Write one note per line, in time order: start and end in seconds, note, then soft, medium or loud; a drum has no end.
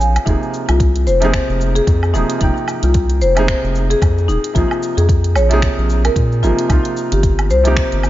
0.00 0.18 A#1 medium
0.00 0.25 C3 medium
0.00 0.26 F3 medium
0.00 0.26 A#3 medium
0.00 0.28 D#4 medium
0.00 0.25 G#4 loud
0.00 0.29 G5 medium
0.00 0.15 G#5 medium
0.00 cabasa medium
0.16 closed hi-hat soft
0.16 cabasa soft
0.16 low woodblock medium
0.25 0.36 F1 medium
0.25 1.18 C3 medium
0.25 1.18 F3 medium
0.25 1.19 A#3 medium
0.25 0.41 D#4 medium
0.25 1.19 D#4 medium
0.25 kick medium
0.25 closed hi-hat medium
0.25 cabasa soft
0.29 1.20 G#4 medium
0.43 cabasa soft
0.54 cabasa medium
0.69 1.08 C2 medium
0.69 0.80 F4 medium
0.69 closed hi-hat soft
0.69 cabasa soft
0.69 low woodblock medium
0.80 kick loud
0.80 closed hi-hat medium
0.80 cabasa soft
0.96 closed hi-hat soft
0.96 cabasa soft
1.06 1.40 F1 medium
1.06 1.32 C5 medium
1.06 cabasa medium
1.20 2.11 C3 medium
1.20 2.11 F3 medium
1.20 2.12 A#3 medium
1.20 2.12 D#4 medium
1.20 closed hi-hat soft
1.20 cabasa soft
1.24 2.13 G#4 loud
1.33 finger snap medium
1.33 kick loud
1.33 closed hi-hat medium
1.33 cabasa soft
1.33 low woodblock medium
1.49 1.80 F1 medium
1.49 cabasa soft
1.61 cabasa medium
1.75 1.87 G#4 loud
1.75 closed hi-hat soft
1.75 cabasa soft
1.87 2.15 F2 loud
1.87 kick loud
1.87 closed hi-hat medium
1.87 cabasa soft
2.03 cabasa soft
2.03 low woodblock medium
2.13 2.23 D#1 medium
2.13 2.37 C3 medium
2.13 2.38 F3 medium
2.13 2.38 A#3 medium
2.13 2.40 D#4 loud
2.13 2.38 D#4 medium
2.13 2.39 G#4 medium
2.13 cabasa medium
2.30 closed hi-hat soft
2.30 cabasa soft
2.39 2.51 F1 loud
2.39 3.32 C3 medium
2.39 3.32 F3 medium
2.39 3.33 A#3 medium
2.39 3.33 D#4 medium
2.39 2.56 D#4 medium
2.39 3.34 G5 medium
2.39 kick loud
2.39 closed hi-hat medium
2.39 cabasa soft
2.57 cabasa soft
2.68 cabasa medium
2.68 low woodblock medium
2.83 3.22 C2 medium
2.83 2.94 F4 medium
2.83 closed hi-hat soft
2.83 cabasa soft
2.94 kick medium
2.94 closed hi-hat medium
2.94 cabasa soft
3.10 closed hi-hat soft
3.10 cabasa soft
3.21 3.54 F1 medium
3.21 3.47 C5 loud
3.21 cabasa medium
3.35 4.52 C3 medium
3.35 4.52 F3 medium
3.35 4.53 A#3 medium
3.35 4.53 D#4 medium
3.35 4.54 G#4 loud
3.35 closed hi-hat soft
3.35 cabasa soft
3.35 low woodblock medium
3.48 finger snap medium
3.48 kick loud
3.48 closed hi-hat medium
3.48 cabasa soft
3.63 3.95 F1 medium
3.63 cabasa soft
3.75 cabasa medium
3.90 4.01 G#4 loud
3.90 closed hi-hat soft
3.90 cabasa soft
4.02 4.30 F2 medium
4.02 kick loud
4.02 closed hi-hat medium
4.02 cabasa soft
4.02 low woodblock medium
4.18 cabasa soft
4.28 4.38 D#1 medium
4.28 4.54 D#4 loud
4.28 cabasa medium
4.44 closed hi-hat soft
4.44 cabasa soft
4.53 4.65 A#1 loud
4.53 5.47 C3 medium
4.53 5.47 F3 medium
4.53 5.48 A#3 medium
4.53 5.48 D#4 medium
4.53 4.70 F4 medium
4.53 kick medium
4.53 closed hi-hat medium
4.53 cabasa soft
4.57 5.49 G#4 medium
4.71 cabasa soft
4.71 low woodblock medium
4.83 cabasa medium
4.97 5.37 F2 medium
4.97 5.08 G#4 medium
4.97 closed hi-hat soft
4.97 cabasa soft
5.09 kick loud
5.09 closed hi-hat medium
5.09 cabasa soft
5.24 closed hi-hat soft
5.24 cabasa soft
5.35 5.68 A#1 medium
5.35 5.61 C#5 loud
5.35 cabasa medium
5.35 low woodblock medium
5.49 6.39 C3 loud
5.49 6.40 F3 medium
5.49 6.40 A#3 medium
5.49 6.41 D#4 medium
5.49 closed hi-hat soft
5.49 cabasa soft
5.53 6.41 G#4 loud
5.62 5.77 C#5 medium
5.62 finger snap medium
5.62 kick loud
5.62 closed hi-hat medium
5.62 cabasa soft
5.78 6.09 A#1 medium
5.78 cabasa soft
5.90 cabasa medium
6.05 6.16 A#4 loud
6.05 closed hi-hat soft
6.05 cabasa soft
6.05 low woodblock medium
6.16 6.44 A#2 medium
6.16 kick loud
6.16 closed hi-hat medium
6.16 cabasa soft
6.32 cabasa soft
6.42 6.52 G#1 medium
6.42 6.66 C3 medium
6.42 6.67 F3 medium
6.42 6.67 A#3 medium
6.42 6.67 D#4 medium
6.42 6.69 F4 loud
6.42 6.68 G#4 medium
6.42 cabasa medium
6.59 closed hi-hat soft
6.59 cabasa soft
6.67 6.79 C2 medium
6.67 7.61 C3 medium
6.67 7.61 F3 medium
6.67 7.62 A#3 medium
6.67 6.84 D#4 medium
6.67 7.62 D#4 medium
6.67 7.63 F4 medium
6.67 kick loud
6.67 closed hi-hat medium
6.67 cabasa soft
6.67 low woodblock medium
6.85 closed hi-hat soft
6.85 cabasa soft
6.97 cabasa medium
7.12 7.51 G1 medium
7.12 7.23 G4 medium
7.12 closed hi-hat soft
7.12 cabasa soft
7.23 kick medium
7.23 closed hi-hat medium
7.23 cabasa soft
7.39 closed hi-hat soft
7.39 cabasa soft
7.39 low woodblock medium
7.50 7.83 C2 medium
7.50 7.76 C5 loud
7.50 cabasa medium
7.64 8.10 C3 medium
7.64 8.10 F3 medium
7.64 8.10 A#3 medium
7.64 8.10 D#4 medium
7.64 8.10 G4 loud
7.64 closed hi-hat soft
7.64 cabasa soft
7.77 finger snap medium
7.77 kick loud
7.77 closed hi-hat medium
7.77 cabasa soft
7.92 8.10 G1 medium
7.92 closed hi-hat soft
7.92 cabasa soft
8.03 cabasa medium
8.03 low woodblock medium